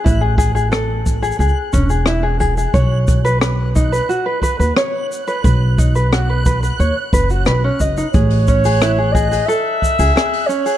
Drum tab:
HH |--------------------------------|--------------------------------|--------------------------------|--o---o-------o-------o---o---o-|
SH |x---x-x-x---x-xxxx--x-x-x---x-x-|x---x-x-x---x-x-x---x-x-x---x-x-|x---x-x-x---x-x-x---x-x-x---x-x-|x---x-x-x---x-x-x---x-x-x---x-x-|
SD |--------r---------------r-------|--------r---------------r-------|--------r---------------r-------|--------r---------------r-------|
BD |o---o-------o-------o-------o---|o---o-------o-------o-----------|o---o-------o-------o-------o---|o---o-------o-------o-----------|